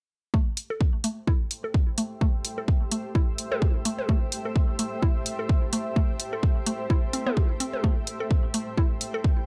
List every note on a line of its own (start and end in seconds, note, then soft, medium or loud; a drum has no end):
0.34 0.38 A3 medium
0.34 9.46 A3 medium
0.34 kick loud
0.39 9.46 G4 medium
0.57 open hi-hat medium
0.62 9.46 C5 medium
0.70 0.72 A4 medium
0.70 8.24 E5 medium
0.81 kick loud
1.04 1.08 A3 medium
1.04 open hi-hat medium
1.27 1.32 E4 medium
1.27 kick loud
1.51 open hi-hat medium
1.64 1.66 A4 medium
1.74 kick loud
1.98 2.02 A3 medium
1.98 open hi-hat medium
2.21 2.25 A3 medium
2.21 kick loud
2.45 open hi-hat medium
2.58 2.60 A4 medium
2.68 kick loud
2.92 2.96 A3 medium
2.92 open hi-hat medium
3.15 3.19 E4 medium
3.15 kick loud
3.38 open hi-hat medium
3.52 3.54 A4 medium
3.52 high tom medium
3.62 kick loud
3.85 3.89 A3 medium
3.85 open hi-hat medium
3.99 high tom medium
4.09 4.13 A3 medium
4.09 kick loud
4.32 open hi-hat loud
4.45 4.47 A4 medium
4.56 kick loud
4.79 4.83 A3 medium
4.79 open hi-hat medium
5.02 5.07 E4 medium
5.02 kick loud
5.26 open hi-hat medium
5.39 5.41 A4 medium
5.49 kick loud
5.73 5.77 A3 medium
5.73 open hi-hat medium
5.96 6.00 A3 medium
5.96 kick loud
6.20 open hi-hat medium
6.33 6.35 A4 medium
6.43 kick loud
6.66 6.71 A3 medium
6.66 open hi-hat medium
6.90 6.94 E4 medium
6.90 kick loud
7.13 7.19 C4 medium
7.13 open hi-hat medium
7.27 7.30 B3 medium
7.27 high tom medium
7.37 kick loud
7.60 7.64 C4 medium
7.60 open hi-hat medium
7.73 high tom medium
7.84 7.88 A3 medium
7.84 kick loud
8.07 open hi-hat medium
8.20 8.22 A4 medium
8.20 9.46 G5 medium
8.31 kick loud
8.54 8.58 A3 medium
8.54 open hi-hat medium
8.77 8.82 E4 medium
8.77 kick loud
9.01 open hi-hat medium
9.14 9.16 A4 medium
9.24 kick loud